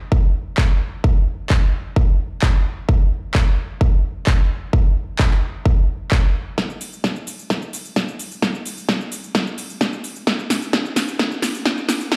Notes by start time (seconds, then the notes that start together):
0.12 kick
0.58 kick, clap
1.04 kick
1.50 kick, clap
1.96 kick
2.42 kick, clap
2.89 kick
3.34 kick, clap
3.81 kick
4.27 kick, clap
4.73 kick
5.19 kick, clap
5.31 clap
5.66 kick
6.11 kick, clap
6.58 kick, snare, shaker
6.70 shaker
6.81 open hi-hat, shaker
6.93 shaker
7.04 kick, snare, shaker
7.16 shaker
7.27 open hi-hat, shaker
7.39 shaker
7.50 kick, snare, shaker
7.62 shaker
7.73 open hi-hat, shaker
7.85 shaker
7.96 kick, snare, shaker
8.08 shaker
8.19 open hi-hat, shaker
8.31 shaker
8.42 kick, snare, shaker
8.54 shaker
8.66 open hi-hat, shaker
8.77 shaker
8.89 kick, snare, shaker
9.01 shaker
9.12 open hi-hat, shaker
9.24 shaker
9.35 kick, snare, shaker
9.47 shaker
9.58 open hi-hat, shaker
9.70 shaker
9.81 kick, snare, shaker
9.93 shaker
10.04 open hi-hat, shaker
10.16 shaker
10.27 kick, snare, shaker
10.39 shaker
10.50 snare, open hi-hat, shaker
10.62 shaker
10.73 kick, snare, shaker
10.85 shaker
10.96 snare, open hi-hat, shaker
11.08 shaker
11.19 kick, snare, shaker
11.31 shaker
11.42 snare, open hi-hat, shaker
11.54 shaker
11.65 kick, snare, shaker
11.77 shaker
11.89 snare, open hi-hat, shaker
12.01 shaker
12.12 kick, snare, shaker